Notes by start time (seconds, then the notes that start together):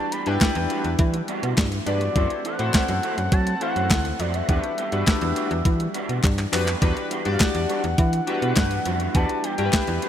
Already playing: E3 G3 D4 E4 A5
0.11 G3 B3 D4 G4 B5, closed hi-hat
0.26 G2 G3 B3 D4 E4 F#4 G4 B4 G5, closed hi-hat
0.41 kick, snare, clap, closed hi-hat
0.55 E2, muted clean electric guitar stroke, closed hi-hat
0.70 G3 B3 D4 F#4, closed hi-hat
0.84 E2, muted clean electric guitar stroke, closed hi-hat
0.99 E3, muted clean electric guitar stroke, kick, closed hi-hat
1.13 muted clean electric guitar stroke, closed hi-hat
1.28 G3 B3 D4 F#4, closed hi-hat
1.42 B2 G3 B3 D4 F#4, closed hi-hat
1.57 G2, muted clean electric guitar stroke, kick, snare, clap, closed hi-hat
1.72 muted clean electric guitar stroke, closed hi-hat
1.86 G2 G3 B3 D4 F#4 G4 B4 D5, closed hi-hat
2.01 G3 B3 D4 F#4, closed hi-hat
2.15 F#2 E3 A3 C4 E4 F#4 A4 C5 F#5, kick, closed hi-hat
2.30 muted clean electric guitar stroke, closed hi-hat
2.45 E3 A3 C4 A4 F#5, closed hi-hat
2.59 A2 E3 A3 C4 E4 F#4 A4 C5, closed hi-hat
2.74 kick, snare, clap, closed hi-hat
2.88 F#2, muted clean electric guitar stroke, closed hi-hat
3.03 E3 A3 C4 F#4, closed hi-hat
3.18 F#2, muted clean electric guitar stroke, closed hi-hat
3.32 F#3 A5, muted clean electric guitar stroke, kick, closed hi-hat
3.47 muted clean electric guitar stroke, closed hi-hat
3.61 E3 A3 C4 E4 F#4 A4 C5 F#5, closed hi-hat
3.76 F#2 E3 A3 C4 F#4, closed hi-hat
3.90 D2, kick, snare, clap, closed hi-hat
4.05 muted clean electric guitar stroke, closed hi-hat
4.19 F2 E3 A3 C4 F#4 D5, closed hi-hat
4.34 E3 A3 C4 F#4 E5, closed hi-hat
4.48 E2 E3 G3 B3 D4 F#4 G4 B4, kick, closed hi-hat
4.63 muted clean electric guitar stroke, closed hi-hat
4.78 G3 B3 D4 G4, closed hi-hat
4.92 G2 G3 B3 D4 F#4 G4 B4, closed hi-hat
5.07 kick, snare, clap, closed hi-hat
5.21 E2, muted clean electric guitar stroke, closed hi-hat
5.36 G3 B3 D4 F#4, closed hi-hat
5.51 E2, muted clean electric guitar stroke, closed hi-hat
5.65 E3, muted clean electric guitar stroke, kick, closed hi-hat
5.80 muted clean electric guitar stroke, closed hi-hat
5.94 G3 B3 D4 F#4, closed hi-hat
6.09 B2 G3 B3 D4 F#4, closed hi-hat
6.23 G2, muted clean electric guitar stroke, kick, clap, closed hi-hat
6.38 muted clean electric guitar stroke, clap, closed hi-hat
6.52 F2 G3 B3 D4 F#4 G4 B4, clap, open hi-hat
6.67 G3 B3 D4 F#4, clap, closed hi-hat
6.81 E2 E3 G3 B3 D4 E4 F#4 G4 B4, kick, closed hi-hat
6.96 muted clean electric guitar stroke, closed hi-hat
7.10 G3 B3 D4 G4, closed hi-hat
7.25 G2 G3 B3 D4 F#4 G4 D5, closed hi-hat
7.33 F5
7.40 F#5, kick, snare, clap, closed hi-hat
7.55 E2, muted clean electric guitar stroke, closed hi-hat
7.69 G3 B3 D4 F#4, closed hi-hat
7.84 E2, muted clean electric guitar stroke, closed hi-hat
7.98 E3, muted clean electric guitar stroke, kick, closed hi-hat
8.13 muted clean electric guitar stroke, closed hi-hat
8.27 G3 B3 D4 F#4 G4 B4, closed hi-hat
8.42 B2 G3 B3 D4 F#4, closed hi-hat
8.56 G2, muted clean electric guitar stroke, kick, snare, clap, closed hi-hat
8.71 muted clean electric guitar stroke, closed hi-hat
8.85 F2 G3 B3 D4 F#4, closed hi-hat
9.00 G3 B3 D4 F#4, closed hi-hat
9.14 E2 G3 B3 D4 F#4 G4 B4 A5, kick, closed hi-hat
9.29 muted clean electric guitar stroke, closed hi-hat
9.44 G3 B3 D4 G4 G5, closed hi-hat
9.58 G2 G3 B3 D4 E4 F#4 G4 A#4, closed hi-hat
9.65 B4
9.73 kick, snare, clap, closed hi-hat
9.87 E2, muted clean electric guitar stroke, closed hi-hat
10.02 G3 B3 D4 F#4, closed hi-hat